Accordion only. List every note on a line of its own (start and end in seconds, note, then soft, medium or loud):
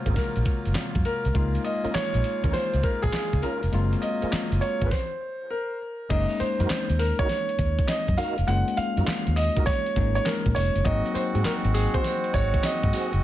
0.00 1.32 F#3 medium
0.00 1.31 A#3 medium
0.00 3.68 F4 medium
1.35 3.70 C#3 medium
1.35 3.70 G#3 medium
1.35 4.88 A#3 medium
3.73 4.90 F#3 medium
3.73 4.90 F4 medium
10.85 13.24 G#3 medium
10.85 13.24 C4 medium
10.85 13.24 F#4 loud